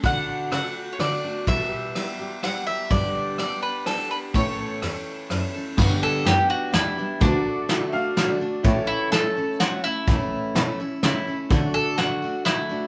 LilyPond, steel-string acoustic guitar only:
\new Staff \with { instrumentName = "Steel-string acoustic guitar" } { \time 3/4 \key d \major \tempo 4 = 126 <d a d' fis'>4 <a fis'>4 <d a d' fis'>8 <a d' fis'>8 | <e, b, e g b g'>4 <e g b g'>8 <e g b g'>8 <e g b g'>8 <e g b g'>8 | <g, d g b d' g'>4 <g b d' g'>4 <g b d' g'>4 | <a, e a cis' a'>4 <e a cis' a'>4 <e a cis' a'>8 <a cis' a'>8 |
<g, d g b d' g'>4 <b d' g'>4 <g b d' g'>8 <g b d' g'>8 | <d a d' fis'>4 <d a d' fis'>8 <a d' fis'>8 <d a d' fis'>8 <a d' fis'>8 | <a, e a cis' e'>4 <e a cis' e'>8 <a cis' e'>8 <e a cis' e'>8 <a cis' e'>8 | <a, e a cis' e'>4 <e a cis' e'>8 <a cis' e'>8 <e a cis' e'>8 <a cis' e'>8 |
<d a d' fis'>4 <d a d' fis'>8 <a d' fis'>8 <d a d' fis'>8 <a d' fis'>8 | }